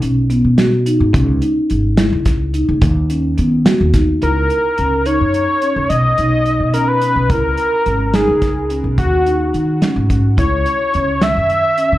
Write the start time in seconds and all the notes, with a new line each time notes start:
0.02 B1 C#4, closed hi-hat
0.30 B3, closed hi-hat
0.45 B2
0.58 F#4, snare, closed hi-hat
0.86 D#4, closed hi-hat
1.00 G#2
1.13 C#2 C#4, kick, closed hi-hat
1.42 D#4, closed hi-hat
1.70 G#1, closed hi-hat
1.97 E4, snare, closed hi-hat
2.13 C#2
2.25 kick, snare, closed hi-hat
2.54 D#4, closed hi-hat
2.69 C#2
2.82 D#2, kick, closed hi-hat
3.10 C#4, closed hi-hat
3.38 D#3 B3, closed hi-hat
3.66 F#4, snare, closed hi-hat
3.81 D#2
3.94 D#4, kick, snare, closed hi-hat
4.22 C#2 E4 A#4, closed hi-hat
4.50 closed hi-hat
4.78 C#2 C#4, closed hi-hat
5.06 D#4 C#5, closed hi-hat
5.21 F#2
5.34 closed hi-hat
5.62 C#4, closed hi-hat
5.76 C#2
5.89 B1 D#5, closed hi-hat
6.18 B1 D#4, closed hi-hat
6.46 D#4, closed hi-hat
6.60 B2
6.74 C#4 A#4, closed hi-hat
6.88 B4
7.02 closed hi-hat
7.16 B1
7.30 C#2 E4 A#4, kick, closed hi-hat
7.58 closed hi-hat
7.86 G#1 C#4, closed hi-hat
8.14 D#4 G#4, snare, closed hi-hat
8.28 C#2
8.42 kick, snare, closed hi-hat
8.70 C#4, closed hi-hat
8.84 B1
8.98 D#2 F#4, kick, closed hi-hat
9.26 D#4, closed hi-hat
9.54 D#3 D#4, closed hi-hat
9.82 C#4, snare, closed hi-hat
9.96 G#2
10.09 C#4, kick, closed hi-hat
10.37 C#2 E4 C#5, kick, closed hi-hat
10.66 closed hi-hat
10.93 C#2 C#4, closed hi-hat
11.22 D#3 E5, snare, closed hi-hat
11.37 F#2
11.50 closed hi-hat
11.78 C#4, closed hi-hat
11.92 C#3